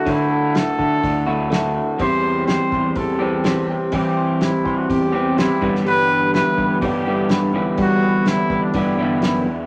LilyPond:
<<
  \new Staff \with { instrumentName = "Trumpet" } { \time 4/4 \key g \major \tempo 4 = 124 e'4 a'2 r4 | c''4 c''4 a'4. r8 | g'4 e'8. fis'16 g'4 e'8. r16 | b'4 b'4 g'4. r8 |
fis'4 e'8. d'16 e'4 e'8. r16 | }
  \new Staff \with { instrumentName = "Clean electric guitar" } { \time 4/4 \key g \major <d d' e' a'>8 a'8 e'8 a'8 d'8 e'8 a'8 e'8 | e8 c''8 g'8 c''8 c'8 g'8 c''8 g'8 | e8 c''8 g'8 c''8 c'8 g'8 c''8 g8 | g8 b'8 e'8 b'8 d'8 e'8 b'8 e'8 |
g8 b'8 e'8 b'8 d'8 e'8 b'8 e'8 | }
  \new Staff \with { instrumentName = "Clean electric guitar" } { \clef bass \time 4/4 \key g \major <d a e' fis'>2~ <d a e' fis'>8 <d a e' fis'>8 <d a e' fis'>4 | <e g c' g'>2~ <e g c' g'>8 <e g c' g'>8 <e g c' g'>4 | <e g c' g'>2~ <e g c' g'>8 <e g c' g'>8 <e g c' g'>8 <g, d e g b g'>8~ | <g, d e g b g'>2 <g, d e g b g'>8 <g, d e g b g'>4 <g, d e g b g'>8~ |
<g, d e g b g'>2 <g, d e g b g'>8 <g, d e g b g'>4 r8 | }
  \new Staff \with { instrumentName = "Picked electric bass" } { \clef bass \time 4/4 \key g \major d4. d8 d,2 | e,4. e,8 e,2 | e4. e8 e,4. g,8~ | g,4. g,8 g,2 |
g4. g8 g,8 g,8 fis,8 e,8 | }
  \new DrumStaff \with { instrumentName = "Drums" } \drummode { \time 4/4 <hho bd>4 <hho sn>8 bd8 <hho bd>4 <hho sn>4 | <hho bd>4 <hho sn>8 bd8 <hho bd>4 <hho sn>4 | <hho bd>4 <hho sn>8 bd8 <hho bd>4 <hho sn>8 bd16 sn16 | hho4 <hho sn>8 bd8 <hho bd>4 <hho sn>4 |
<hho bd>4 <hho sn>8 bd8 <hho bd>4 <hho sn>4 | }
>>